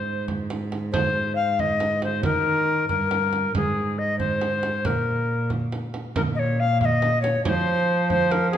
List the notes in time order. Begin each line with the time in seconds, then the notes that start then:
Already playing: G#2 C5
0.28 frame drum
0.50 frame drum
0.72 frame drum
0.92 C5, frame drum
1.35 F5
1.59 D#5, frame drum
1.80 frame drum
2.02 C5, frame drum
2.23 D#3 A#4, frame drum
2.89 G2 A#4, frame drum
3.11 frame drum
3.33 frame drum
3.54 G#2 G#4, frame drum
3.98 D#5
4.19 C5, frame drum
4.41 frame drum
4.63 frame drum
4.85 A#2 A#4, frame drum
5.50 frame drum
5.72 frame drum
5.94 frame drum
6.16 A#2 A#4, frame drum
6.35 D#5
6.39 C#5
6.60 F5
6.81 F5, frame drum
6.85 D#5
7.02 frame drum
7.22 C#5, frame drum
7.44 F3 C#5, frame drum
7.49 C5
8.10 C5, frame drum
8.31 A#4, frame drum
8.51 G#4, frame drum